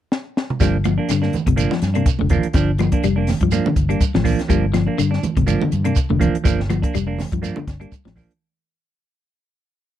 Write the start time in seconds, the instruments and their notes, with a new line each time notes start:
0.12 snare
0.37 snare
0.50 mid tom
0.60 fingered electric bass G1, clean electric guitar F3 G3 A#3 D4, kick, snare, closed hi-hat, shekere
0.84 clean electric guitar F3, closed hi-hat, high conga, claves, shekere
0.98 clean electric guitar A#3 D4
1.09 fingered electric bass G2, clean electric guitar D3, snare, closed hi-hat, claves, shekere
1.22 clean electric guitar A#3 D4, snare
1.33 muted fingered electric bass stroke, closed hi-hat, high conga, low conga, shekere
1.47 fingered electric bass G1, clean electric guitar C3, kick, closed hi-hat, high conga
1.56 clean electric guitar F3 A#3 D4, closed hi-hat, claves, shekere
1.71 clean electric guitar F3, snare, high conga
1.82 fingered electric bass G2, snare, closed hi-hat, shekere
1.94 clean electric guitar C3 A#3 D4, closed hi-hat, claves
2.06 kick, closed hi-hat, shekere
2.19 fingered electric bass F1, clean electric guitar D3, high conga
2.29 clean electric guitar F3 A#3 D4, kick, closed hi-hat, low conga, claves, shekere
2.43 muted fingered electric bass stroke, closed hi-hat
2.53 fingered electric bass G1, clean electric guitar D3 F3 D4, muted clean electric guitar stroke, kick, snare, closed hi-hat, shekere
2.78 clean electric guitar F3, closed hi-hat, high conga, claves, shekere
2.92 clean electric guitar A#3 D4, kick, closed hi-hat
3.03 fingered electric bass F1, clean electric guitar G3, closed hi-hat, claves, shekere
3.16 clean electric guitar A#3 D4
3.27 snare, open hi-hat, high conga, low conga, shekere
3.41 fingered electric bass G2, clean electric guitar F3, kick, closed hi-hat, high conga
3.51 clean electric guitar F3 A#3 D4, closed hi-hat, high conga, claves, shekere
3.66 clean electric guitar D3, high conga, low conga
3.76 fingered electric bass G1, kick, closed hi-hat, shekere
3.89 clean electric guitar G3 A#3 D4, closed hi-hat, claves
4.01 muted fingered electric bass stroke, kick, closed hi-hat, shekere
4.14 fingered electric bass A#1, clean electric guitar F3, snare, high conga
4.24 clean electric guitar F3 A#3 D4, kick, open hi-hat, low conga, claves, shekere
4.39 snare, closed hi-hat
4.48 fingered electric bass G1, clean electric guitar F3 G3 A#3 D4, kick, closed hi-hat, shekere
4.74 clean electric guitar F3, snare, closed hi-hat, high conga, claves, shekere
4.87 clean electric guitar A#3 D4
4.98 fingered electric bass G2, clean electric guitar D3, closed hi-hat, claves, shekere
5.11 clean electric guitar D4, muted clean electric guitar stroke, snare
5.23 muted fingered electric bass stroke, closed hi-hat, high conga, low conga, shekere
5.37 fingered electric bass G1, clean electric guitar C3, kick, closed hi-hat, high conga
5.47 clean electric guitar F3 A#3 D4, closed hi-hat, high conga, claves, shekere
5.61 clean electric guitar D3, high conga, low conga
5.72 fingered electric bass G2, closed hi-hat, shekere
5.84 clean electric guitar C3 A#3 D4, closed hi-hat, claves
5.96 kick, closed hi-hat, shekere
6.10 fingered electric bass F1, clean electric guitar D3, high conga
6.20 clean electric guitar F3 A#3 D4, kick, closed hi-hat, low conga, claves, shekere
6.35 muted fingered electric bass stroke, closed hi-hat
6.44 fingered electric bass G1, clean electric guitar D3 F3 A#3 D4, kick, closed hi-hat, shekere
6.60 snare
6.70 clean electric guitar F3, closed hi-hat, high conga, claves, shekere
6.82 clean electric guitar A#3 D4, kick, closed hi-hat
6.94 fingered electric bass F1, clean electric guitar G3, closed hi-hat, claves, shekere
7.07 clean electric guitar A#3 D4
7.19 snare, open hi-hat, high conga, low conga, shekere
7.32 fingered electric bass G2, clean electric guitar F3, kick, closed hi-hat
7.42 clean electric guitar F3 A#3 D4, closed hi-hat, high conga, claves, shekere
7.56 clean electric guitar D3, high conga
7.67 fingered electric bass G1, kick, snare, closed hi-hat, shekere
7.80 clean electric guitar G3 A#3 D4, closed hi-hat, claves
7.92 muted fingered electric bass stroke, kick, closed hi-hat, shekere
8.05 fingered electric bass A#1, clean electric guitar F3, snare, high conga
8.16 clean electric guitar F3 A#3 D4, kick, open hi-hat, high conga, low conga, claves, shekere
8.31 closed hi-hat